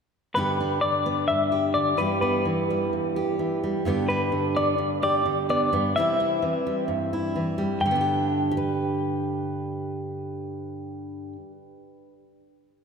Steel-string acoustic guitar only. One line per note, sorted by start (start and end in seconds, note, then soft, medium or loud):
0.36 1.29 G2 soft
0.36 0.81 D3 soft
0.36 1.05 B3 soft
0.36 0.59 D4 soft
0.36 1.51 G4 soft
0.60 1.97 D4 soft
0.83 1.74 D3 soft
1.06 1.98 B3 soft
1.30 1.97 G2 soft
1.52 2.00 G4 soft
1.75 1.98 D3 soft
1.97 2.93 G2 soft
1.97 2.44 E3 soft
1.97 2.70 G3 soft
1.97 2.22 B3 soft
1.97 3.16 G4 soft
2.22 3.85 B3 soft
2.45 3.38 E3 soft
2.70 3.63 G3 soft
2.93 3.83 G2 soft
3.16 3.88 G4 soft
3.39 3.83 E3 soft
3.64 3.87 G3 soft
3.85 4.77 G2 medium
3.85 4.31 D3 soft
3.85 4.55 B3 soft
3.85 4.09 D4 soft
3.85 5.02 G4 soft
4.10 5.69 D4 soft
4.32 5.24 D3 soft
4.56 5.48 B3 soft
4.78 5.69 G2 soft
5.03 5.99 G4 soft
5.26 5.95 D3 soft
5.49 5.69 B3 soft
5.73 5.93 G2 medium
5.73 5.93 B3 soft
5.97 6.42 C3 medium
5.97 6.41 E3 soft
5.97 6.65 G3 soft
5.97 6.19 C4 soft
5.97 7.12 E4 soft
6.20 7.80 C4 soft
6.42 7.34 E3 soft
6.67 7.57 G3 soft
6.88 7.78 G2 soft
7.13 7.82 E4 soft
7.36 7.79 E3 soft
7.58 7.91 G3 soft
7.80 11.36 G2 soft
7.86 11.41 D3 soft
7.91 8.51 B3 soft
7.96 8.57 D4 soft
8.01 8.51 G4 soft
8.51 12.07 G4 soft
8.57 12.12 B4 soft